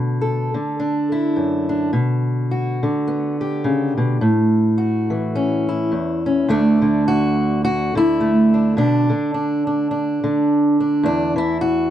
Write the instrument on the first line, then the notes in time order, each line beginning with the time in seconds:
steel-string acoustic guitar
Already playing: B2 D3
0.21 A4
0.54 D3
0.80 D4
1.12 E4
1.36 F#2
1.69 D4
1.93 B2
2.51 F#4
2.83 D3
3.08 B3
3.41 G4
3.64 C#3
3.98 B2
4.21 A2
4.78 F#4
5.10 E3
5.35 C#4
5.69 E4
5.92 E2
6.26 C#4
6.48 D2 D3 A3 D4
6.82 D3
7.08 F#4
7.65 F#4
7.95 D3 E4
8.20 A3
8.54 D4
8.77 B2 D4
9.09 D3
9.34 D4
9.67 D4
9.91 D4
10.24 D3
10.80 D4
11.03 E2 D4
11.36 E3 E4
11.61 F#4